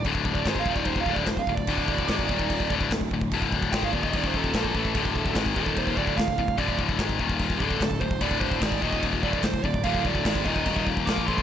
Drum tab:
CC |x---x---x---x---|x---x---x---x---|x---x---x---x---|x---x---x---x---|
SD |----o-------o---|----o-------o---|----o-------o---|----o-------o---|
BD |oooooooooooooooo|oooooooooooooooo|oooooooooooooooo|oooooooooooooooo|

CC |x---x---x---x---|x---x---x---x---|x---x---x---x---|
SD |----o-------o---|----o-------o---|----o-------o---|
BD |oooooooooooooooo|oooooooooooooooo|oooooooooooooooo|